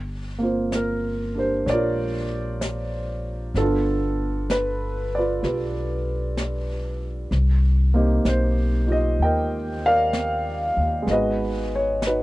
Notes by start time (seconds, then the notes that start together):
Already playing: G1
0.39 A#3 C4
0.43 F4 C5
0.72 A#4, brush sweep, snare, hi-hat pedal
1.35 D4 G4 A#4
1.39 C5
1.66 A#1 C#5 D5, brush sweep, snare
1.73 F4 A#4
2.61 brush sweep, snare, hi-hat pedal
3.54 G1 B3 D4 F4 A4, brush sweep, snare
3.61 D4 F4
4.50 B4, brush sweep, snare, hi-hat pedal
5.15 F4 D5
5.19 B4
5.42 B1 F4 G4 B4, brush sweep, snare
6.37 brush sweep, snare, hi-hat pedal
7.31 C2, brush sweep, snare
7.94 A#3 C4 D#4 G4
8.25 B1 C5, brush sweep, snare, hi-hat pedal
8.87 D#4 F4 G4
8.92 D#5
9.19 D#2 G5, brush sweep
9.24 A#4 D#5
9.86 A#4 D5 F5
10.13 brush sweep, snare, hi-hat pedal
10.77 D#2
11.02 G#3 B3
11.07 G#1 D#4, brush sweep, snare
11.11 F#4 B4 D#5
11.76 C#5
12.02 brush sweep, snare, hi-hat pedal
12.07 D#4 F#4 B4